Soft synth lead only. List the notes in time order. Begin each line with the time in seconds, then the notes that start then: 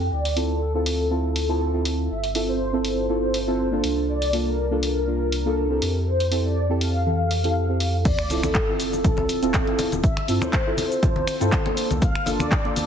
0.12 D5
0.50 A4
0.86 A4
2.10 E5
2.48 C5
2.84 C5
4.08 D5
4.47 A#4
4.83 A#4
6.07 C5
6.45 D5
6.81 F5
8.05 D5
8.43 A4
10.03 E5
10.42 C5
10.78 C5
12.02 F5
12.40 D5
12.76 D5